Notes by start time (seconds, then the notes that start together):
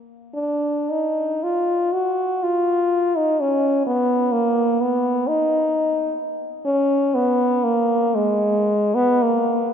0.35 D4
0.91 D#4
1.44 F4
1.93 F#4
2.43 F4
3.17 D#4
3.41 C#4
3.87 B3
4.32 A#3
4.81 B3
5.27 D#4
6.66 C#4
7.15 B3
7.64 A#3
8.15 G#3
8.95 B3
9.22 A#3